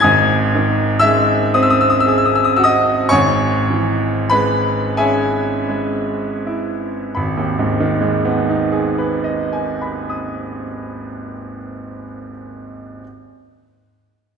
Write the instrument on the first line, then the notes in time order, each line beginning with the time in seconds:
upright piano
0.00 G#1 G#5 D#6 G#6
0.04 G#2
0.55 D#3
0.99 G#3 E5 E6
1.54 C4 D#6
1.63 E6
1.70 D#6
1.81 E6
1.90 D#6
2.00 E6
2.06 G#4 D#6
2.18 E6
2.26 D#6
2.35 E6
2.44 D#6
2.56 F#4 E6
2.64 D#5 D#6
3.09 G#1 G#2 C#5 G#5 C#6
3.70 E3
4.30 G#3 B4 B5
4.97 C#4 G#4 E5 G#5
5.69 G#3
6.47 E4
7.15 G#1 B5
7.37 D#2
7.59 G#2
7.80 D#3
8.01 G#3
8.25 B3
8.50 D#4
8.72 G#4
8.98 B4
9.24 D#5
9.53 G#5
9.81 B5
10.10 D#6